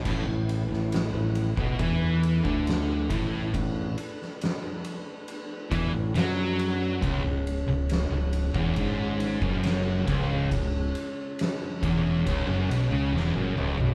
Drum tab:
CC |x---------------|----------------|----------------|----------------|
RD |--x-x-x-x-x-x-x-|x-x-x-x-x-x-x-x-|x-x-x-x-x-x-x-x-|x-x-x-x-x-x-----|
SD |---oo-------o---|---oo-----o-o---|----o-----o-o---|----o-----o-o---|
T1 |----------------|----------------|----------------|-------------o--|
T2 |----------------|----------------|----------------|--------------o-|
FT |----------------|----------------|----------------|---------------o|
BD |o------oo--o--o-|o---------o-----|o------oo--o--o-|o-----o-o-------|